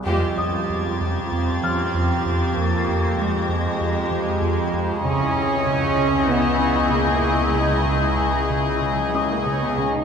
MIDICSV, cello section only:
0, 0, Header, 1, 2, 480
1, 0, Start_track
1, 0, Tempo, 622407
1, 45, Time_signature, 4, 2, 24, 8
1, 5324, Tempo, 636267
1, 7692, End_track
2, 0, Start_track
2, 0, Title_t, "Cello section"
2, 0, Program_c, 0, 48
2, 46, Note_on_c, 0, 56, 53
2, 988, Note_off_c, 0, 56, 0
2, 1017, Note_on_c, 0, 60, 49
2, 1979, Note_off_c, 0, 60, 0
2, 1984, Note_on_c, 0, 58, 58
2, 2448, Note_off_c, 0, 58, 0
2, 2455, Note_on_c, 0, 56, 59
2, 3889, Note_on_c, 0, 61, 81
2, 3892, Note_off_c, 0, 56, 0
2, 4825, Note_off_c, 0, 61, 0
2, 4844, Note_on_c, 0, 59, 67
2, 5324, Note_off_c, 0, 59, 0
2, 5325, Note_on_c, 0, 58, 57
2, 5801, Note_on_c, 0, 56, 45
2, 5803, Note_off_c, 0, 58, 0
2, 6862, Note_off_c, 0, 56, 0
2, 6891, Note_on_c, 0, 54, 35
2, 7004, Note_on_c, 0, 56, 38
2, 7008, Note_off_c, 0, 54, 0
2, 7125, Note_off_c, 0, 56, 0
2, 7129, Note_on_c, 0, 58, 36
2, 7243, Note_on_c, 0, 61, 38
2, 7247, Note_off_c, 0, 58, 0
2, 7364, Note_off_c, 0, 61, 0
2, 7370, Note_on_c, 0, 59, 35
2, 7483, Note_on_c, 0, 61, 39
2, 7488, Note_off_c, 0, 59, 0
2, 7604, Note_off_c, 0, 61, 0
2, 7608, Note_on_c, 0, 63, 44
2, 7692, Note_off_c, 0, 63, 0
2, 7692, End_track
0, 0, End_of_file